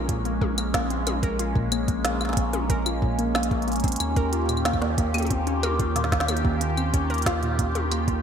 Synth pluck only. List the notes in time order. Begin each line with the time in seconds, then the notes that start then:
0.09 A#2
0.25 A#3
0.42 A#3
0.58 A#3
0.74 A#3
0.90 C4
1.07 C#4
1.23 A#4
1.39 F4
1.56 A#2
1.72 A#3
1.88 A#3
2.05 A#3
2.21 A#3
2.37 C4
2.53 C#4
2.70 A#4
2.86 F4
3.02 A#2
3.19 A#3
3.35 A#3
3.51 A#3
3.67 A#3
3.84 C4
4.00 C#4
4.16 A#4
4.33 F4
4.49 A#2
4.65 A#3
4.82 A#3
4.98 A#3
5.14 A#3
5.31 C4
5.47 C#4
5.63 A#4
5.79 F4
5.96 A#2
6.12 A#3
6.28 A#3
6.45 A#3
6.61 A#3
6.77 C4
6.94 C#4
7.10 A#4
7.26 F4
7.43 A#2
7.59 A#3
7.75 A#3
7.92 A#3
8.08 A#3